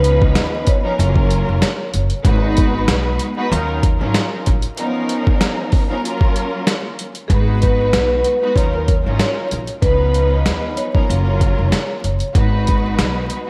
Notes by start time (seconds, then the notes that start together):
Already playing: C#2 F3 B3 C#4 D#4 B4
0.04 closed hi-hat
0.22 kick
0.35 D#2, snare, closed hi-hat
0.67 C#5, kick, closed hi-hat
0.83 F3 B3 C#4 D#4 A#4
0.98 F#1 F#3 A#3 C#4 F4 A#4, closed hi-hat
1.16 kick
1.31 closed hi-hat
1.49 F1
1.62 snare, closed hi-hat
1.94 F#1, closed hi-hat
2.10 closed hi-hat
2.25 G#1 G#3 B3 D#4 F#4 B4, kick, closed hi-hat
2.57 kick, closed hi-hat
2.88 B1, snare, closed hi-hat
3.19 closed hi-hat
3.37 G#3 B3 D#4 F#4 B4
3.50 D#2 F#3 C#4 D#4 F4 A#4, closed hi-hat
3.83 kick, closed hi-hat
4.01 G#1 F#3 C#4 D#4 F4 A#4
4.14 snare, closed hi-hat
4.46 A#1, kick, closed hi-hat
4.62 closed hi-hat
4.77 F3 B3 C#4 D#4 A#4, closed hi-hat
5.09 closed hi-hat
5.27 kick
5.41 snare, closed hi-hat
5.72 kick, open hi-hat
5.89 F3 B3 C#4 D#4 A#4
6.03 F#3 A#3 C#4 F4 A#4, closed hi-hat
6.21 kick
6.36 closed hi-hat
6.67 snare, closed hi-hat
6.99 closed hi-hat
7.15 closed hi-hat
7.28 G#1 G#3 B3 D#4 F#4 G#4 B4, kick, closed hi-hat
7.61 B4, kick, closed hi-hat
7.93 B1, snare, closed hi-hat
8.24 closed hi-hat
8.42 G#3 B3 D#4 F#4 B4
8.55 D#2 F#3 C#4 D#4 F4 A#4 C#5, kick, closed hi-hat
8.75 A#4
8.87 C#5, kick, closed hi-hat
9.06 G#1 F#3 C#4 D#4 F4 A#4
9.19 C#5, snare, closed hi-hat
9.51 A#1, closed hi-hat
9.67 closed hi-hat
9.82 C#2 F3 B3 C#4 D#4 B4, kick, closed hi-hat
10.14 closed hi-hat
10.33 D#5
10.46 D#2, snare, closed hi-hat
10.77 C#5, closed hi-hat
10.94 F3 B3 C#4 D#4 A#4, kick
11.08 F#1 F#3 A#3 C#4 F4 A#4, closed hi-hat
11.41 kick, closed hi-hat
11.59 F1
11.72 snare, closed hi-hat
12.04 F#1, closed hi-hat
12.20 closed hi-hat
12.35 G#1 G#3 B3 D#4 F#4 B4, kick, closed hi-hat
12.67 kick, closed hi-hat
12.99 B1, snare, closed hi-hat
13.30 closed hi-hat
13.47 G#3